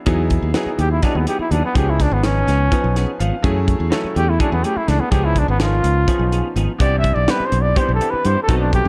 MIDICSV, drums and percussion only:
0, 0, Header, 1, 2, 480
1, 0, Start_track
1, 0, Key_signature, 4, "major"
1, 0, Tempo, 481155
1, 68, Time_signature, 7, 3, 24, 8
1, 8862, End_track
2, 0, Start_track
2, 0, Title_t, "Drums"
2, 60, Note_on_c, 9, 42, 77
2, 66, Note_on_c, 9, 36, 96
2, 160, Note_off_c, 9, 42, 0
2, 166, Note_off_c, 9, 36, 0
2, 301, Note_on_c, 9, 42, 53
2, 306, Note_on_c, 9, 36, 69
2, 401, Note_off_c, 9, 42, 0
2, 406, Note_off_c, 9, 36, 0
2, 540, Note_on_c, 9, 38, 97
2, 540, Note_on_c, 9, 42, 68
2, 640, Note_off_c, 9, 38, 0
2, 640, Note_off_c, 9, 42, 0
2, 786, Note_on_c, 9, 42, 56
2, 885, Note_off_c, 9, 42, 0
2, 1023, Note_on_c, 9, 38, 31
2, 1023, Note_on_c, 9, 42, 69
2, 1027, Note_on_c, 9, 36, 91
2, 1123, Note_off_c, 9, 38, 0
2, 1123, Note_off_c, 9, 42, 0
2, 1127, Note_off_c, 9, 36, 0
2, 1266, Note_on_c, 9, 42, 57
2, 1366, Note_off_c, 9, 42, 0
2, 1511, Note_on_c, 9, 42, 57
2, 1611, Note_off_c, 9, 42, 0
2, 1750, Note_on_c, 9, 36, 98
2, 1750, Note_on_c, 9, 42, 81
2, 1850, Note_off_c, 9, 36, 0
2, 1850, Note_off_c, 9, 42, 0
2, 1992, Note_on_c, 9, 36, 64
2, 1995, Note_on_c, 9, 38, 32
2, 1995, Note_on_c, 9, 42, 62
2, 2092, Note_off_c, 9, 36, 0
2, 2094, Note_off_c, 9, 38, 0
2, 2094, Note_off_c, 9, 42, 0
2, 2230, Note_on_c, 9, 38, 93
2, 2230, Note_on_c, 9, 42, 81
2, 2329, Note_off_c, 9, 38, 0
2, 2329, Note_off_c, 9, 42, 0
2, 2475, Note_on_c, 9, 38, 29
2, 2475, Note_on_c, 9, 42, 52
2, 2575, Note_off_c, 9, 38, 0
2, 2575, Note_off_c, 9, 42, 0
2, 2712, Note_on_c, 9, 36, 89
2, 2713, Note_on_c, 9, 42, 78
2, 2812, Note_off_c, 9, 36, 0
2, 2813, Note_off_c, 9, 42, 0
2, 2956, Note_on_c, 9, 38, 31
2, 2956, Note_on_c, 9, 42, 52
2, 3056, Note_off_c, 9, 38, 0
2, 3056, Note_off_c, 9, 42, 0
2, 3197, Note_on_c, 9, 42, 59
2, 3296, Note_off_c, 9, 42, 0
2, 3432, Note_on_c, 9, 36, 99
2, 3433, Note_on_c, 9, 42, 73
2, 3531, Note_off_c, 9, 36, 0
2, 3532, Note_off_c, 9, 42, 0
2, 3670, Note_on_c, 9, 36, 68
2, 3673, Note_on_c, 9, 42, 52
2, 3770, Note_off_c, 9, 36, 0
2, 3773, Note_off_c, 9, 42, 0
2, 3909, Note_on_c, 9, 38, 105
2, 3909, Note_on_c, 9, 42, 73
2, 4009, Note_off_c, 9, 38, 0
2, 4009, Note_off_c, 9, 42, 0
2, 4154, Note_on_c, 9, 42, 51
2, 4254, Note_off_c, 9, 42, 0
2, 4390, Note_on_c, 9, 36, 94
2, 4390, Note_on_c, 9, 42, 74
2, 4489, Note_off_c, 9, 36, 0
2, 4490, Note_off_c, 9, 42, 0
2, 4631, Note_on_c, 9, 42, 54
2, 4731, Note_off_c, 9, 42, 0
2, 4870, Note_on_c, 9, 38, 30
2, 4870, Note_on_c, 9, 42, 55
2, 4970, Note_off_c, 9, 38, 0
2, 4970, Note_off_c, 9, 42, 0
2, 5105, Note_on_c, 9, 42, 73
2, 5106, Note_on_c, 9, 36, 97
2, 5205, Note_off_c, 9, 36, 0
2, 5205, Note_off_c, 9, 42, 0
2, 5344, Note_on_c, 9, 36, 72
2, 5347, Note_on_c, 9, 42, 56
2, 5444, Note_off_c, 9, 36, 0
2, 5446, Note_off_c, 9, 42, 0
2, 5584, Note_on_c, 9, 38, 93
2, 5584, Note_on_c, 9, 42, 80
2, 5684, Note_off_c, 9, 38, 0
2, 5684, Note_off_c, 9, 42, 0
2, 5826, Note_on_c, 9, 42, 61
2, 5926, Note_off_c, 9, 42, 0
2, 6064, Note_on_c, 9, 36, 101
2, 6065, Note_on_c, 9, 42, 80
2, 6164, Note_off_c, 9, 36, 0
2, 6164, Note_off_c, 9, 42, 0
2, 6309, Note_on_c, 9, 42, 58
2, 6409, Note_off_c, 9, 42, 0
2, 6549, Note_on_c, 9, 42, 57
2, 6649, Note_off_c, 9, 42, 0
2, 6784, Note_on_c, 9, 36, 101
2, 6784, Note_on_c, 9, 42, 85
2, 6884, Note_off_c, 9, 36, 0
2, 6884, Note_off_c, 9, 42, 0
2, 7023, Note_on_c, 9, 36, 71
2, 7025, Note_on_c, 9, 42, 54
2, 7123, Note_off_c, 9, 36, 0
2, 7125, Note_off_c, 9, 42, 0
2, 7262, Note_on_c, 9, 38, 99
2, 7262, Note_on_c, 9, 42, 75
2, 7362, Note_off_c, 9, 38, 0
2, 7362, Note_off_c, 9, 42, 0
2, 7502, Note_on_c, 9, 42, 52
2, 7601, Note_off_c, 9, 42, 0
2, 7745, Note_on_c, 9, 36, 96
2, 7746, Note_on_c, 9, 42, 79
2, 7845, Note_off_c, 9, 36, 0
2, 7846, Note_off_c, 9, 42, 0
2, 7991, Note_on_c, 9, 42, 55
2, 8091, Note_off_c, 9, 42, 0
2, 8228, Note_on_c, 9, 42, 58
2, 8327, Note_off_c, 9, 42, 0
2, 8467, Note_on_c, 9, 36, 97
2, 8467, Note_on_c, 9, 42, 79
2, 8567, Note_off_c, 9, 36, 0
2, 8567, Note_off_c, 9, 42, 0
2, 8708, Note_on_c, 9, 36, 70
2, 8710, Note_on_c, 9, 42, 51
2, 8808, Note_off_c, 9, 36, 0
2, 8810, Note_off_c, 9, 42, 0
2, 8862, End_track
0, 0, End_of_file